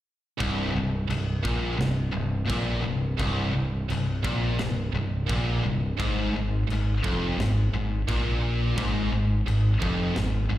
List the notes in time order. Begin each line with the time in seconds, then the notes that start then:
0.40 C1 C2, kick, china
0.75 C1 C2
1.09 C1 C2, china
1.43 A#1 A#2, kick
1.77 C1 C2, snare, china
2.12 C1 C2
2.46 A#2, kick, china
2.50 A#1
2.82 C1 C2
3.19 C1 C2, kick, china
3.53 C1 C2
3.90 C1 C2, china
4.24 A#1 A#2, kick
4.59 C1 C2, snare, china
4.93 C1 C2
5.28 A#1 A#2, kick, china
5.63 C1 C2
5.99 G#1 G#2, kick, china
6.31 G#1 G#2
6.36 G#2
6.67 G#1 G#2, china
6.73 G#2
7.04 F1 F2, kick
7.37 G#1 G#2, snare, china
7.73 G#1 G#2
8.08 A#1 A#2, kick, china
8.78 G#1 G#2, kick, china
9.12 G#1 G#2
9.46 G#1 G#2, china
9.82 F1 F2, kick
10.16 G#1 G#2, snare, china
10.50 G#1 G#2